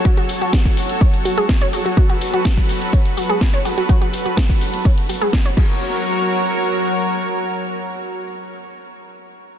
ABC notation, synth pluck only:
X:1
M:4/4
L:1/16
Q:1/4=125
K:F#m
V:1 name="Synth pluck"
F F z F z4 c z F G z c F F | F F z F z4 c z F G z c F F | F F z F z4 c z F G z c F2- | F2 z12 z2 |
z16 |]